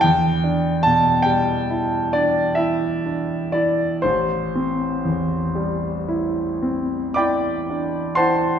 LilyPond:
\new Staff \with { instrumentName = "Grand piano" } { \time 9/8 \key a \minor \tempo 4. = 41 << { g''4 a''8 g''4 d''8 e''4 d''8 | c''2. <d'' g'' b'' d'''>4 <c'' fis'' a'' c'''>8 | } \\ { e,8 d'8 b,8 g8 e'8 d'8 e'8 d'8 e'8 | a,,8 c'8 e,8 g8 e'8 c'8 e'8 d'8 e'8 | } >> }